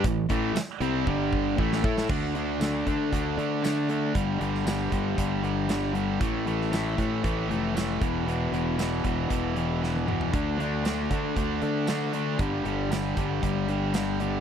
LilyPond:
<<
  \new Staff \with { instrumentName = "Distorted electric guitar" } { \clef bass \time 4/4 \key g \lydian \tempo 4 = 116 <a, e>8 <a, e a>8 r8 <c g c'>8 <g, d g>4 <a, e a>8 <a e' a'>8 | \key d \lydian <d a d'>8 <d a d'>8 <d a d'>8 <d a d'>8 <d a d'>8 <d a d'>8 <d a d'>8 <d a d'>8 | <g, d g>8 <g, d g>8 <g, d g>8 <g, d g>8 <g, d g>8 <g, d g>8 <g, d g>8 <g, d g>8 | <a, e a>8 <a, e a>8 <a, e a>8 <a, e a>8 <a, e a>8 <a, e a>8 <a, e a>8 <e, b, e>8 |
<e, b, e>8 <e, b, e>8 <e, b, e>8 <e, b, e>8 <e, b, e>8 <e, b, e>8 <e, b, e>8 <e, b, e>8 | <d a d'>8 <d a d'>8 <d a d'>8 <d a d'>8 <d a d'>8 <d a d'>8 <d a d'>8 <d a d'>8 | <g, d g>8 <g, d g>8 <g, d g>8 <g, d g>8 <g, d g>8 <g, d g>8 <g, d g>8 <g, d g>8 | }
  \new Staff \with { instrumentName = "Overdriven electric guitar" } { \clef bass \time 4/4 \key g \lydian <a, e>8 <a, e a>8 r8 <c g c'>8 <g, d g>4 <a, e a>8 <a e' a'>8 | \key d \lydian <d a d'>8 <d a d'>8 <d a d'>8 <d a d'>8 <d a d'>8 <d a d'>8 <d a d'>8 <d a d'>8 | <g, d g>8 <g, d g>8 <g, d g>8 <g, d g>8 <g, d g>8 <g, d g>8 <g, d g>8 <g, d g>8 | <a, e a>8 <a, e a>8 <a, e a>8 <a, e a>8 <a, e a>8 <a, e a>8 <a, e a>8 <e, b, e>8 |
<e, b, e>8 <e, b, e>8 <e, b, e>8 <e, b, e>8 <e, b, e>8 <e, b, e>8 <e, b, e>8 <e, b, e>8 | <d a d'>8 <d a d'>8 <d a d'>8 <d a d'>8 <d a d'>8 <d a d'>8 <d a d'>8 <d a d'>8 | <g, d g>8 <g, d g>8 <g, d g>8 <g, d g>8 <g, d g>8 <g, d g>8 <g, d g>8 <g, d g>8 | }
  \new Staff \with { instrumentName = "Fingered electric bass" } { \clef bass \time 4/4 \key g \lydian a,,8 a,,8 r8 c,8 g,,4 a,,8 a,8 | \key d \lydian d,4. d8 d,8 d4. | g,,8 g,,4 g,,8 g,,2 | a,,4. a,8 a,,8 f,,4 e,,8~ |
e,,8 e,,4 e,,8 e,,2 | d,4. d8 d,8 d4. | g,,8 g,,4 g,,8 g,,2 | }
  \new DrumStaff \with { instrumentName = "Drums" } \drummode { \time 4/4 <hh bd>8 <hh bd>8 <hh sn tamb>8 hh8 bd8 bd8 bd16 sn16 bd16 sn16 | <cymc bd>8 hh8 <hh sn tamb>8 <hh bd>8 <hh bd>8 hh8 <hh sn tamb>8 hh8 | <hh bd>8 hh16 sn16 <hh sn tamb>8 <hh bd>8 <hh bd>8 hh8 <hh sn tamb>8 hh8 | <hh bd>8 hh16 sn16 <hh sn tamb>8 <hh bd>8 <hh bd>8 hh8 <hh sn tamb>8 <hh bd>8 |
hh8 hh8 <hh sn tamb>8 <hh bd>8 <hh bd>8 hh8 sn16 tommh16 toml16 tomfh16 | <hh bd>8 hh8 <hh sn tamb>8 <hh bd>8 <hh bd>8 hh8 <hh sn tamb>8 hh8 | <hh bd>8 hh8 <hh sn tamb>8 <hh bd>8 <hh bd>8 hh8 <hh sn tamb>8 hh8 | }
>>